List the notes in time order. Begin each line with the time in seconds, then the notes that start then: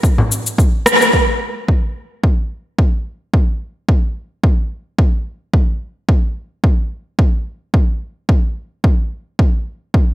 0.03 kick, cabasa
0.18 frame drum
0.32 cabasa
0.46 cabasa
0.58 kick, cabasa
0.86 cross-stick, cabasa
1.02 cabasa
1.13 kick
1.68 kick
2.24 kick
2.79 kick
3.34 kick
3.89 kick
4.44 kick
4.99 kick
5.54 kick
6.09 kick
6.64 kick
7.19 kick
7.74 kick
8.29 kick
8.84 kick
9.39 kick
9.94 kick